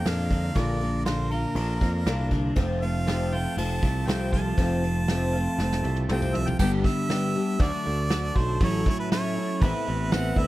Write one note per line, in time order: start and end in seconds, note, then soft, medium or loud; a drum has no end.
0.00 1.05 A#3 medium
0.00 1.31 F4 medium
0.00 6.57 F4 medium
0.00 2.55 D5 medium
0.00 2.54 A#5 medium
0.05 0.50 F2 loud
0.05 0.31 A#2 medium
0.05 0.31 D3 medium
0.05 0.31 A#3 medium
0.05 0.31 D4 medium
0.05 0.29 F4 medium
0.05 0.59 F5 medium
0.05 snare loud
0.05 ride medium
0.31 1.57 D3 medium
0.31 0.55 A#3 soft
0.31 0.55 D4 soft
0.31 0.55 F4 soft
0.31 kick medium
0.31 ride medium
0.55 1.44 A#1 medium
0.55 0.81 A#2 medium
0.55 0.81 D3 medium
0.55 0.81 A#3 medium
0.55 0.81 D4 medium
0.55 0.81 F4 medium
0.55 1.05 D5 medium
0.55 kick loud
0.55 ride medium
0.81 1.05 A#3 soft
0.81 1.05 D4 soft
0.81 1.06 F4 soft
0.81 ride medium
1.05 1.31 A#2 medium
1.05 1.31 D3 medium
1.05 1.31 A#3 medium
1.05 1.31 D4 medium
1.05 1.31 F4 medium
1.05 1.33 C5 medium
1.05 snare loud
1.05 ride medium
1.31 1.56 A#3 soft
1.31 1.57 D4 soft
1.31 1.57 F4 medium
1.31 2.32 A#4 medium
1.31 ride medium
1.55 1.78 A#1 loud
1.55 1.82 D3 medium
1.55 1.82 A#3 medium
1.55 1.82 D4 medium
1.55 1.81 F4 medium
1.55 ride medium
1.81 2.04 F2 medium
1.81 2.07 A#3 soft
1.81 2.07 D4 soft
1.81 2.07 F4 soft
1.81 kick medium
1.81 ride medium
2.06 2.50 C2 loud
2.06 2.32 A#2 medium
2.06 2.33 D3 medium
2.06 2.32 A#3 medium
2.06 2.32 D4 medium
2.06 2.31 F4 medium
2.06 snare loud
2.06 ride medium
2.30 2.57 D3 medium
2.30 2.56 A#3 soft
2.30 2.56 D4 medium
2.30 2.56 F4 medium
2.30 kick medium
2.30 ride medium
2.56 3.45 F1 medium
2.56 2.82 F2 medium
2.56 2.82 C3 medium
2.56 2.82 F3 medium
2.56 2.82 A3 medium
2.56 2.82 C4 medium
2.56 2.82 F4 medium
2.56 6.55 C5 medium
2.56 6.55 A5 medium
2.56 kick loud
2.56 ride medium
2.82 3.06 F3 soft
2.82 3.07 A3 soft
2.82 3.07 C4 medium
2.82 3.07 F4 medium
2.82 3.35 F5 medium
2.82 ride medium
3.07 3.32 F2 medium
3.07 3.32 C3 medium
3.07 3.33 F3 medium
3.07 3.33 A3 medium
3.07 3.32 C4 medium
3.07 3.31 F4 medium
3.07 snare loud
3.07 ride medium
3.32 3.56 F3 soft
3.32 3.57 A3 soft
3.32 3.58 C4 medium
3.32 3.58 F4 medium
3.32 3.57 G5 loud
3.32 ride medium
3.57 3.79 F1 loud
3.57 3.83 F3 medium
3.57 3.83 A3 medium
3.57 3.82 C4 medium
3.57 3.81 F4 medium
3.57 4.09 A5 loud
3.57 ride loud
3.83 4.05 C2 medium
3.83 4.07 F3 soft
3.83 4.07 A3 soft
3.83 4.07 C4 soft
3.83 4.07 F4 soft
3.83 kick medium
3.83 ride medium
4.07 4.52 C2 loud
4.07 4.33 F2 medium
4.07 4.33 C3 medium
4.07 4.33 F3 medium
4.07 4.32 A3 medium
4.07 4.31 C4 medium
4.07 4.31 F4 medium
4.07 4.33 G5 medium
4.07 snare loud
4.07 ride loud
4.32 4.57 F3 soft
4.32 4.57 A3 soft
4.32 4.57 C4 soft
4.32 4.58 F4 medium
4.32 6.05 A5 loud
4.32 kick medium
4.32 ride medium
4.57 5.46 F1 medium
4.57 4.83 F2 medium
4.57 4.83 C3 medium
4.57 4.83 F3 medium
4.57 4.84 A3 medium
4.57 4.83 C4 medium
4.57 4.83 F4 loud
4.57 kick loud
4.57 ride medium
4.83 5.09 F3 soft
4.83 5.10 A3 soft
4.83 5.09 C4 soft
4.83 5.09 F4 medium
4.83 ride medium
5.08 5.35 F2 medium
5.08 5.35 C3 medium
5.08 5.35 F3 medium
5.08 5.35 A3 medium
5.08 5.35 C4 medium
5.08 5.34 F4 loud
5.08 snare loud
5.08 ride medium
5.33 5.60 C4 medium
5.33 5.60 F4 medium
5.33 ride medium
5.38 5.59 F3 medium
5.38 5.60 A3 medium
5.58 5.81 F1 loud
5.58 5.85 F3 medium
5.58 5.85 A3 medium
5.58 5.86 C4 medium
5.58 snare medium
5.63 5.85 F4 medium
5.72 snare medium
5.83 6.05 C2 medium
5.83 6.10 F4 medium
5.83 high tom medium
5.87 6.09 F3 soft
5.87 6.09 A3 medium
5.87 6.10 C4 medium
5.96 high tom medium
6.09 6.53 C2 loud
6.09 6.35 F2 loud
6.09 6.35 C3 medium
6.09 6.35 F3 loud
6.09 6.35 A3 loud
6.09 6.35 C4 medium
6.09 6.34 F4 loud
6.09 6.36 G5 loud
6.09 mid tom medium
6.22 mid tom medium
6.35 6.60 F3 soft
6.35 6.60 A3 soft
6.35 6.61 C4 medium
6.35 6.60 F4 medium
6.35 6.49 E5 loud
6.35 floor tom medium
6.47 6.59 G5 medium
6.47 floor tom medium
6.59 6.82 G1 medium
6.59 6.85 G2 medium
6.59 6.85 D3 medium
6.59 6.85 G3 medium
6.59 6.85 B3 medium
6.59 6.84 D4 medium
6.59 7.59 G4 medium
6.59 6.84 G4 medium
6.59 7.59 D5 medium
6.59 6.71 G5 loud
6.59 7.60 B5 medium
6.59 kick loud
6.59 crash loud
6.84 7.08 G3 soft
6.84 7.09 B3 medium
6.84 7.10 D4 soft
6.84 7.10 G4 medium
6.84 7.63 E5 loud
6.84 kick medium
7.09 7.35 G3 medium
7.09 7.34 B3 medium
7.09 7.34 D4 medium
7.09 7.33 G4 medium
7.09 snare loud
7.09 open hi-hat medium
7.34 7.59 G3 medium
7.34 7.59 B3 medium
7.34 7.59 D4 medium
7.34 7.60 G4 medium
7.59 7.71 D2 loud
7.59 7.85 D3 medium
7.59 7.85 F#3 medium
7.59 7.85 A3 medium
7.59 7.85 D4 medium
7.59 7.85 F#4 medium
7.59 9.60 F#4 medium
7.59 8.39 D5 loud
7.59 8.60 D5 medium
7.59 9.59 A5 medium
7.59 kick loud
7.59 open hi-hat medium
7.86 8.30 D2 medium
7.86 8.10 A3 soft
7.86 8.10 D4 medium
7.86 8.11 F#4 medium
8.09 8.59 D3 medium
8.09 8.35 F#3 medium
8.09 8.36 A3 medium
8.09 8.35 D4 medium
8.09 8.34 F#4 medium
8.09 snare loud
8.09 open hi-hat medium
8.35 8.58 B1 medium
8.35 8.61 A3 soft
8.35 8.61 D4 soft
8.35 8.61 F#4 medium
8.35 8.61 C5 medium
8.35 kick medium
8.61 8.83 A1 medium
8.61 8.86 A2 medium
8.61 8.86 F#3 medium
8.61 8.86 A3 medium
8.61 8.86 C#4 medium
8.61 8.86 E4 medium
8.61 9.61 C#5 medium
8.61 8.86 C#5 loud
8.61 kick loud
8.61 open hi-hat medium
8.86 9.11 A3 soft
8.86 9.12 C#4 medium
8.86 9.12 E4 medium
8.86 8.99 C#5 loud
8.86 kick medium
9.00 9.11 B4 medium
9.11 9.37 F#3 medium
9.11 9.37 A3 medium
9.11 9.37 C#4 medium
9.11 9.36 E4 medium
9.11 9.63 C#5 loud
9.11 snare loud
9.11 open hi-hat medium
9.37 9.63 A3 soft
9.37 9.63 C#4 soft
9.37 9.62 E4 medium
9.61 9.72 A1 loud
9.61 9.87 A2 medium
9.61 9.87 E3 medium
9.61 9.86 B3 medium
9.61 9.87 C4 medium
9.61 9.85 E4 medium
9.61 10.47 A4 medium
9.61 10.47 B4 medium
9.61 10.14 B4 loud
9.61 10.47 B5 medium
9.61 kick loud
9.61 open hi-hat medium
9.86 10.31 A1 medium
9.86 10.12 B3 medium
9.86 10.11 C4 soft
9.86 10.11 E4 medium
10.11 10.37 E3 medium
10.11 10.36 B3 medium
10.11 10.36 C4 medium
10.11 10.35 E4 medium
10.11 10.40 F#5 loud
10.11 snare loud
10.11 open hi-hat medium
10.36 10.47 D2 medium
10.36 10.47 B3 medium
10.36 10.47 C4 soft
10.36 10.47 E4 medium
10.36 10.47 E5 loud
10.36 kick medium